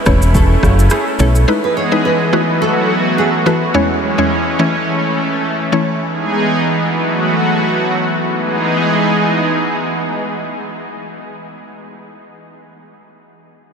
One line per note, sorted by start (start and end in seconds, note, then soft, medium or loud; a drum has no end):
0.00 1.46 E4 medium
0.06 0.55 E1 loud
0.06 0.33 A3 medium
0.06 1.47 A3 medium
0.06 0.33 C#4 medium
0.06 1.47 C#4 medium
0.06 0.33 E4 medium
0.06 0.33 C#5 medium
0.06 kick loud
0.06 cross-stick medium
0.06 shaker medium
0.22 shaker medium
0.35 0.56 A4 medium
0.35 kick loud
0.35 shaker medium
0.63 0.87 F#1 medium
0.63 kick medium
0.63 cross-stick medium
0.63 shaker medium
0.79 shaker medium
0.90 1.03 G#4 medium
0.90 cross-stick loud
0.90 shaker medium
1.19 1.44 B1 medium
1.19 1.41 A3 medium
1.19 1.42 C#4 medium
1.19 1.42 E4 medium
1.19 1.32 A4 medium
1.19 1.42 C#5 medium
1.19 shaker medium
1.36 shaker medium
1.48 3.72 E3 medium
1.48 1.88 G#3 medium
1.48 2.32 G#3 medium
1.48 3.72 B3 medium
1.48 1.88 D#4 medium
1.48 1.88 E4 medium
1.48 2.32 G#4 medium
1.48 1.88 B4 loud
1.48 2.32 D#5 medium
1.64 1.73 B4 medium
1.77 1.88 C#5 medium
1.92 2.30 G#3 medium
1.92 2.30 D#4 medium
1.92 2.30 E4 medium
1.92 2.30 B4 medium
2.05 2.26 B4 medium
2.33 2.59 E3 medium
2.33 3.73 F#3 medium
2.33 2.59 A3 medium
2.33 3.73 A3 medium
2.33 2.59 E4 medium
2.33 3.73 F#4 medium
2.33 2.59 F#4 medium
2.33 2.59 B4 medium
2.62 2.83 A4 medium
3.18 3.30 G#4 medium
3.46 3.68 E3 medium
3.46 3.68 A3 medium
3.46 3.68 E4 medium
3.46 3.68 F#4 medium
3.46 3.58 A4 medium
3.46 3.68 B4 medium
3.74 4.14 E2 medium
3.74 5.99 E3 medium
3.74 4.14 G#3 medium
3.74 4.59 G#3 medium
3.74 4.15 C#4 medium
3.74 5.99 C#4 loud
3.74 4.15 E4 medium
3.74 4.15 C#5 loud
4.18 4.56 E2 medium
4.18 4.56 G#3 medium
4.18 4.56 C#4 medium
4.18 4.56 E4 medium
4.18 4.56 C#5 medium
4.59 4.85 E3 medium
4.59 4.86 A3 medium
4.59 6.00 A3 medium
4.59 4.86 C#4 medium
4.59 4.86 E4 medium
4.59 4.86 C#5 medium
5.72 5.94 E3 medium
5.72 5.94 A3 medium
5.72 5.94 C#4 medium
5.72 5.95 E4 medium
5.72 5.95 C#5 medium
6.01 8.25 E3 medium
6.01 6.85 G#3 medium
6.01 8.25 B3 medium
6.01 6.85 D#4 medium
6.01 6.85 G#4 medium
6.86 8.26 F#3 medium
6.86 8.26 A3 medium
6.86 8.26 F#4 medium
8.27 11.29 E3 medium
8.27 11.29 G#3 medium
8.27 11.29 B3 medium
8.27 11.30 D#4 medium
8.27 11.30 G#4 medium